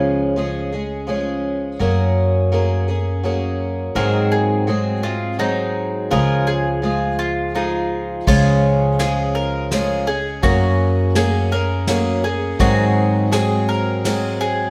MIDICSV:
0, 0, Header, 1, 5, 480
1, 0, Start_track
1, 0, Key_signature, -5, "major"
1, 0, Tempo, 720288
1, 1199, Time_signature, 3, 2, 24, 8
1, 9796, End_track
2, 0, Start_track
2, 0, Title_t, "Mandolin"
2, 0, Program_c, 0, 25
2, 2638, Note_on_c, 0, 70, 75
2, 2872, Note_off_c, 0, 70, 0
2, 2876, Note_on_c, 0, 68, 64
2, 3346, Note_off_c, 0, 68, 0
2, 3354, Note_on_c, 0, 65, 64
2, 3590, Note_off_c, 0, 65, 0
2, 3595, Note_on_c, 0, 63, 70
2, 4065, Note_off_c, 0, 63, 0
2, 4074, Note_on_c, 0, 70, 77
2, 4309, Note_off_c, 0, 70, 0
2, 4312, Note_on_c, 0, 68, 67
2, 4783, Note_off_c, 0, 68, 0
2, 4790, Note_on_c, 0, 65, 65
2, 5027, Note_off_c, 0, 65, 0
2, 5034, Note_on_c, 0, 63, 65
2, 5505, Note_off_c, 0, 63, 0
2, 5515, Note_on_c, 0, 65, 76
2, 5985, Note_off_c, 0, 65, 0
2, 5992, Note_on_c, 0, 68, 66
2, 6229, Note_off_c, 0, 68, 0
2, 6230, Note_on_c, 0, 70, 68
2, 6703, Note_off_c, 0, 70, 0
2, 6712, Note_on_c, 0, 68, 69
2, 6949, Note_off_c, 0, 68, 0
2, 6951, Note_on_c, 0, 66, 73
2, 7424, Note_off_c, 0, 66, 0
2, 7437, Note_on_c, 0, 68, 72
2, 7672, Note_off_c, 0, 68, 0
2, 7678, Note_on_c, 0, 70, 75
2, 8148, Note_off_c, 0, 70, 0
2, 8158, Note_on_c, 0, 68, 70
2, 8393, Note_off_c, 0, 68, 0
2, 8398, Note_on_c, 0, 66, 81
2, 8869, Note_off_c, 0, 66, 0
2, 8879, Note_on_c, 0, 68, 71
2, 9114, Note_off_c, 0, 68, 0
2, 9121, Note_on_c, 0, 70, 73
2, 9591, Note_off_c, 0, 70, 0
2, 9601, Note_on_c, 0, 68, 74
2, 9796, Note_off_c, 0, 68, 0
2, 9796, End_track
3, 0, Start_track
3, 0, Title_t, "Twelve-string acoustic guitar"
3, 0, Program_c, 1, 25
3, 0, Note_on_c, 1, 49, 69
3, 0, Note_on_c, 1, 53, 71
3, 0, Note_on_c, 1, 56, 66
3, 0, Note_on_c, 1, 61, 77
3, 0, Note_on_c, 1, 68, 75
3, 233, Note_off_c, 1, 53, 0
3, 241, Note_off_c, 1, 49, 0
3, 241, Note_on_c, 1, 53, 56
3, 245, Note_off_c, 1, 56, 0
3, 248, Note_off_c, 1, 61, 0
3, 248, Note_on_c, 1, 56, 51
3, 251, Note_on_c, 1, 61, 53
3, 252, Note_off_c, 1, 68, 0
3, 255, Note_on_c, 1, 68, 64
3, 474, Note_off_c, 1, 68, 0
3, 480, Note_off_c, 1, 53, 0
3, 480, Note_off_c, 1, 61, 0
3, 482, Note_on_c, 1, 68, 43
3, 484, Note_off_c, 1, 56, 0
3, 488, Note_on_c, 1, 61, 39
3, 498, Note_on_c, 1, 56, 38
3, 711, Note_off_c, 1, 56, 0
3, 712, Note_on_c, 1, 53, 50
3, 716, Note_off_c, 1, 61, 0
3, 719, Note_on_c, 1, 56, 52
3, 720, Note_off_c, 1, 68, 0
3, 724, Note_on_c, 1, 61, 56
3, 728, Note_on_c, 1, 68, 62
3, 1193, Note_off_c, 1, 53, 0
3, 1195, Note_off_c, 1, 61, 0
3, 1196, Note_on_c, 1, 54, 67
3, 1199, Note_off_c, 1, 56, 0
3, 1201, Note_on_c, 1, 58, 78
3, 1203, Note_on_c, 1, 61, 71
3, 1206, Note_off_c, 1, 68, 0
3, 1209, Note_on_c, 1, 68, 78
3, 1673, Note_off_c, 1, 58, 0
3, 1674, Note_off_c, 1, 54, 0
3, 1677, Note_on_c, 1, 54, 49
3, 1680, Note_off_c, 1, 61, 0
3, 1681, Note_on_c, 1, 58, 62
3, 1690, Note_on_c, 1, 61, 55
3, 1692, Note_off_c, 1, 68, 0
3, 1694, Note_on_c, 1, 68, 58
3, 1911, Note_off_c, 1, 68, 0
3, 1917, Note_off_c, 1, 54, 0
3, 1919, Note_off_c, 1, 58, 0
3, 1919, Note_on_c, 1, 68, 44
3, 1921, Note_off_c, 1, 61, 0
3, 1929, Note_on_c, 1, 61, 43
3, 1935, Note_on_c, 1, 58, 37
3, 2152, Note_off_c, 1, 58, 0
3, 2156, Note_on_c, 1, 54, 59
3, 2158, Note_off_c, 1, 61, 0
3, 2158, Note_off_c, 1, 68, 0
3, 2160, Note_on_c, 1, 58, 55
3, 2166, Note_on_c, 1, 61, 54
3, 2168, Note_on_c, 1, 68, 62
3, 2631, Note_off_c, 1, 54, 0
3, 2633, Note_on_c, 1, 44, 70
3, 2635, Note_on_c, 1, 51, 71
3, 2638, Note_off_c, 1, 58, 0
3, 2639, Note_on_c, 1, 54, 79
3, 2640, Note_off_c, 1, 61, 0
3, 2641, Note_on_c, 1, 56, 75
3, 2642, Note_off_c, 1, 68, 0
3, 2642, Note_on_c, 1, 60, 80
3, 2644, Note_on_c, 1, 68, 80
3, 3103, Note_off_c, 1, 54, 0
3, 3111, Note_on_c, 1, 54, 55
3, 3114, Note_off_c, 1, 44, 0
3, 3114, Note_off_c, 1, 56, 0
3, 3115, Note_off_c, 1, 51, 0
3, 3115, Note_off_c, 1, 60, 0
3, 3117, Note_on_c, 1, 56, 58
3, 3123, Note_on_c, 1, 60, 57
3, 3126, Note_off_c, 1, 68, 0
3, 3128, Note_on_c, 1, 68, 62
3, 3342, Note_off_c, 1, 68, 0
3, 3350, Note_off_c, 1, 60, 0
3, 3350, Note_on_c, 1, 68, 45
3, 3353, Note_off_c, 1, 54, 0
3, 3356, Note_off_c, 1, 56, 0
3, 3358, Note_on_c, 1, 60, 45
3, 3363, Note_on_c, 1, 56, 40
3, 3367, Note_on_c, 1, 54, 39
3, 3581, Note_off_c, 1, 54, 0
3, 3586, Note_off_c, 1, 56, 0
3, 3589, Note_on_c, 1, 54, 62
3, 3591, Note_off_c, 1, 60, 0
3, 3592, Note_off_c, 1, 68, 0
3, 3594, Note_on_c, 1, 56, 58
3, 3599, Note_on_c, 1, 60, 62
3, 3605, Note_on_c, 1, 68, 64
3, 4069, Note_off_c, 1, 54, 0
3, 4069, Note_on_c, 1, 49, 68
3, 4072, Note_on_c, 1, 53, 76
3, 4073, Note_off_c, 1, 56, 0
3, 4074, Note_off_c, 1, 60, 0
3, 4075, Note_on_c, 1, 56, 72
3, 4077, Note_on_c, 1, 65, 74
3, 4079, Note_off_c, 1, 68, 0
3, 4082, Note_on_c, 1, 68, 78
3, 4537, Note_off_c, 1, 53, 0
3, 4545, Note_off_c, 1, 56, 0
3, 4545, Note_on_c, 1, 53, 52
3, 4550, Note_off_c, 1, 65, 0
3, 4551, Note_off_c, 1, 49, 0
3, 4553, Note_on_c, 1, 56, 59
3, 4557, Note_off_c, 1, 68, 0
3, 4558, Note_on_c, 1, 65, 56
3, 4565, Note_on_c, 1, 68, 61
3, 5020, Note_off_c, 1, 53, 0
3, 5028, Note_off_c, 1, 56, 0
3, 5028, Note_on_c, 1, 53, 54
3, 5032, Note_off_c, 1, 65, 0
3, 5036, Note_off_c, 1, 68, 0
3, 5036, Note_on_c, 1, 56, 57
3, 5040, Note_on_c, 1, 65, 63
3, 5044, Note_on_c, 1, 68, 62
3, 5506, Note_off_c, 1, 53, 0
3, 5508, Note_off_c, 1, 56, 0
3, 5509, Note_on_c, 1, 49, 71
3, 5514, Note_off_c, 1, 68, 0
3, 5514, Note_on_c, 1, 53, 78
3, 5516, Note_on_c, 1, 56, 78
3, 5517, Note_off_c, 1, 65, 0
3, 5519, Note_on_c, 1, 61, 79
3, 5522, Note_on_c, 1, 68, 81
3, 5985, Note_off_c, 1, 53, 0
3, 5992, Note_off_c, 1, 49, 0
3, 5993, Note_on_c, 1, 53, 60
3, 5994, Note_off_c, 1, 56, 0
3, 5997, Note_on_c, 1, 56, 62
3, 6002, Note_off_c, 1, 61, 0
3, 6004, Note_on_c, 1, 61, 59
3, 6007, Note_off_c, 1, 68, 0
3, 6010, Note_on_c, 1, 68, 59
3, 6463, Note_off_c, 1, 53, 0
3, 6471, Note_on_c, 1, 53, 58
3, 6472, Note_off_c, 1, 61, 0
3, 6475, Note_off_c, 1, 56, 0
3, 6477, Note_on_c, 1, 56, 64
3, 6480, Note_on_c, 1, 61, 60
3, 6482, Note_off_c, 1, 68, 0
3, 6485, Note_on_c, 1, 68, 67
3, 6702, Note_off_c, 1, 68, 0
3, 6710, Note_off_c, 1, 61, 0
3, 6710, Note_on_c, 1, 68, 47
3, 6713, Note_off_c, 1, 53, 0
3, 6716, Note_off_c, 1, 56, 0
3, 6718, Note_on_c, 1, 61, 44
3, 6725, Note_on_c, 1, 56, 39
3, 6946, Note_off_c, 1, 61, 0
3, 6946, Note_on_c, 1, 54, 72
3, 6948, Note_off_c, 1, 56, 0
3, 6951, Note_off_c, 1, 68, 0
3, 6951, Note_on_c, 1, 58, 77
3, 6954, Note_on_c, 1, 61, 80
3, 6959, Note_on_c, 1, 68, 78
3, 7430, Note_off_c, 1, 58, 0
3, 7431, Note_off_c, 1, 54, 0
3, 7434, Note_on_c, 1, 54, 56
3, 7435, Note_off_c, 1, 61, 0
3, 7438, Note_on_c, 1, 58, 58
3, 7443, Note_on_c, 1, 61, 63
3, 7446, Note_off_c, 1, 68, 0
3, 7448, Note_on_c, 1, 68, 70
3, 7666, Note_off_c, 1, 68, 0
3, 7673, Note_off_c, 1, 61, 0
3, 7674, Note_on_c, 1, 68, 54
3, 7675, Note_off_c, 1, 54, 0
3, 7677, Note_off_c, 1, 58, 0
3, 7681, Note_on_c, 1, 61, 47
3, 7690, Note_on_c, 1, 58, 38
3, 7912, Note_off_c, 1, 58, 0
3, 7913, Note_on_c, 1, 54, 61
3, 7916, Note_off_c, 1, 68, 0
3, 7917, Note_off_c, 1, 61, 0
3, 7920, Note_on_c, 1, 58, 62
3, 7925, Note_on_c, 1, 61, 62
3, 7930, Note_on_c, 1, 68, 64
3, 8147, Note_off_c, 1, 68, 0
3, 8153, Note_off_c, 1, 61, 0
3, 8155, Note_off_c, 1, 54, 0
3, 8155, Note_on_c, 1, 68, 50
3, 8159, Note_off_c, 1, 58, 0
3, 8161, Note_on_c, 1, 61, 42
3, 8169, Note_on_c, 1, 58, 37
3, 8391, Note_on_c, 1, 44, 75
3, 8395, Note_off_c, 1, 68, 0
3, 8395, Note_on_c, 1, 51, 79
3, 8396, Note_off_c, 1, 58, 0
3, 8397, Note_on_c, 1, 54, 86
3, 8398, Note_off_c, 1, 61, 0
3, 8398, Note_on_c, 1, 56, 84
3, 8400, Note_on_c, 1, 60, 82
3, 8403, Note_on_c, 1, 68, 84
3, 8865, Note_off_c, 1, 54, 0
3, 8873, Note_on_c, 1, 54, 60
3, 8875, Note_off_c, 1, 44, 0
3, 8876, Note_off_c, 1, 60, 0
3, 8877, Note_off_c, 1, 51, 0
3, 8877, Note_off_c, 1, 56, 0
3, 8879, Note_on_c, 1, 56, 61
3, 8884, Note_on_c, 1, 60, 65
3, 8885, Note_off_c, 1, 68, 0
3, 8888, Note_on_c, 1, 68, 67
3, 9351, Note_off_c, 1, 54, 0
3, 9359, Note_on_c, 1, 54, 61
3, 9362, Note_off_c, 1, 60, 0
3, 9365, Note_off_c, 1, 56, 0
3, 9367, Note_on_c, 1, 56, 65
3, 9371, Note_on_c, 1, 60, 57
3, 9372, Note_off_c, 1, 68, 0
3, 9375, Note_on_c, 1, 68, 65
3, 9796, Note_off_c, 1, 54, 0
3, 9796, Note_off_c, 1, 56, 0
3, 9796, Note_off_c, 1, 60, 0
3, 9796, Note_off_c, 1, 68, 0
3, 9796, End_track
4, 0, Start_track
4, 0, Title_t, "Upright bass"
4, 0, Program_c, 2, 32
4, 0, Note_on_c, 2, 37, 64
4, 1170, Note_off_c, 2, 37, 0
4, 1201, Note_on_c, 2, 42, 66
4, 2611, Note_off_c, 2, 42, 0
4, 2635, Note_on_c, 2, 44, 67
4, 4047, Note_off_c, 2, 44, 0
4, 4076, Note_on_c, 2, 37, 64
4, 5488, Note_off_c, 2, 37, 0
4, 5515, Note_on_c, 2, 37, 71
4, 6929, Note_off_c, 2, 37, 0
4, 6953, Note_on_c, 2, 42, 66
4, 8370, Note_off_c, 2, 42, 0
4, 8397, Note_on_c, 2, 44, 71
4, 9796, Note_off_c, 2, 44, 0
4, 9796, End_track
5, 0, Start_track
5, 0, Title_t, "Drums"
5, 5514, Note_on_c, 9, 36, 73
5, 5516, Note_on_c, 9, 49, 68
5, 5580, Note_off_c, 9, 36, 0
5, 5583, Note_off_c, 9, 49, 0
5, 5994, Note_on_c, 9, 38, 63
5, 5994, Note_on_c, 9, 51, 43
5, 6060, Note_off_c, 9, 38, 0
5, 6060, Note_off_c, 9, 51, 0
5, 6474, Note_on_c, 9, 38, 63
5, 6474, Note_on_c, 9, 51, 45
5, 6541, Note_off_c, 9, 38, 0
5, 6541, Note_off_c, 9, 51, 0
5, 6953, Note_on_c, 9, 36, 75
5, 6955, Note_on_c, 9, 51, 42
5, 7020, Note_off_c, 9, 36, 0
5, 7021, Note_off_c, 9, 51, 0
5, 7432, Note_on_c, 9, 38, 65
5, 7432, Note_on_c, 9, 51, 42
5, 7498, Note_off_c, 9, 38, 0
5, 7498, Note_off_c, 9, 51, 0
5, 7912, Note_on_c, 9, 38, 69
5, 7912, Note_on_c, 9, 51, 48
5, 7979, Note_off_c, 9, 38, 0
5, 7979, Note_off_c, 9, 51, 0
5, 8394, Note_on_c, 9, 51, 48
5, 8396, Note_on_c, 9, 36, 73
5, 8461, Note_off_c, 9, 51, 0
5, 8462, Note_off_c, 9, 36, 0
5, 8879, Note_on_c, 9, 38, 61
5, 8879, Note_on_c, 9, 51, 49
5, 8946, Note_off_c, 9, 38, 0
5, 8946, Note_off_c, 9, 51, 0
5, 9363, Note_on_c, 9, 38, 65
5, 9363, Note_on_c, 9, 51, 51
5, 9430, Note_off_c, 9, 38, 0
5, 9430, Note_off_c, 9, 51, 0
5, 9796, End_track
0, 0, End_of_file